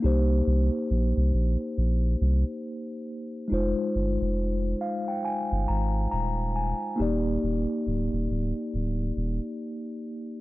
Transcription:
0.00 0.42 C2 loud
0.00 3.45 A#3 medium
0.00 3.47 D#4 medium
0.00 3.48 G4 medium
0.06 3.48 C5 medium
0.47 0.70 C2 loud
0.91 1.13 A#1 medium
1.17 1.32 C2 medium
1.34 1.57 A#1 medium
1.78 2.16 A#1 medium
2.21 2.44 C2 loud
3.48 3.74 F1 loud
3.48 6.93 G#3 medium
3.48 6.94 D#4 medium
3.48 6.95 F4 medium
3.54 6.96 C5 medium
3.95 4.18 G1 medium
4.21 4.75 F1 loud
4.81 5.06 F5 medium
5.08 5.24 G5 medium
5.25 5.65 G#5 medium
5.52 5.67 G1 medium
5.68 6.07 G#1 medium
5.68 6.09 A#5 medium
6.11 6.74 D#1 medium
6.11 6.52 A#5 medium
6.56 6.96 G#5 medium
6.96 7.38 D#1 loud
6.96 10.41 A#3 medium
6.96 10.41 D#4 medium
6.96 10.41 G4 medium
7.02 10.41 D5 medium
7.43 7.66 D#1 medium
7.87 8.09 D1 medium
8.13 8.28 D#1 medium
8.30 8.53 D1 medium
8.74 9.12 D1 medium
9.17 9.39 D#1 medium

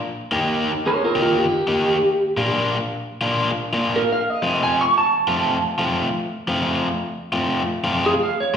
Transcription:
0.31 0.70 D#3 medium
0.31 0.71 A#3 medium
0.31 0.71 D#4 medium
0.31 0.71 G4 medium
0.87 1.02 A#4 medium
0.87 1.02 C#5 medium
1.04 1.19 F4 medium
1.04 1.20 A#4 medium
1.15 1.45 D#3 medium
1.15 1.45 A#3 medium
1.15 1.44 D#4 medium
1.15 1.44 G4 medium
1.22 1.36 F4 medium
1.22 1.39 A#4 medium
1.39 2.36 G4 medium
1.67 1.96 D#3 medium
1.67 1.96 A#3 medium
1.67 1.96 D#4 medium
1.67 1.96 G4 medium
2.37 2.76 A#2 medium
2.37 2.76 A#3 medium
2.37 2.76 D4 medium
2.37 2.76 F4 medium
3.21 3.50 A#2 medium
3.21 3.50 A#3 medium
3.21 3.50 D4 medium
3.21 3.50 F4 loud
3.73 4.02 A#2 medium
3.73 4.02 A#3 medium
3.73 4.02 D4 medium
3.73 4.01 F4 medium
3.96 4.11 A#4 medium
4.12 4.30 F5 medium
4.30 4.61 D#5 medium
4.42 4.81 F3 medium
4.42 4.82 A3 medium
4.42 4.82 C4 medium
4.42 4.82 F4 medium
4.63 4.79 G#5 medium
4.81 4.96 C#6 medium
4.98 5.96 A5 medium
5.27 5.56 F3 medium
5.27 5.56 A3 medium
5.27 5.56 C4 medium
5.27 5.56 F4 medium
5.78 6.07 F3 medium
5.78 6.07 A3 medium
5.78 6.07 C4 medium
5.78 6.07 F4 medium
6.48 6.87 F3 medium
6.48 6.87 A3 medium
6.48 6.87 C4 medium
6.48 6.88 F4 medium
7.32 7.62 F3 medium
7.32 7.61 A3 medium
7.32 7.61 C4 medium
7.32 7.61 F4 loud
7.84 8.13 F3 medium
7.84 8.13 A3 medium
7.84 8.12 C4 medium
7.84 8.12 F4 medium
8.06 8.21 G#4 medium
8.23 8.38 F5 medium
8.40 8.57 C#5 medium

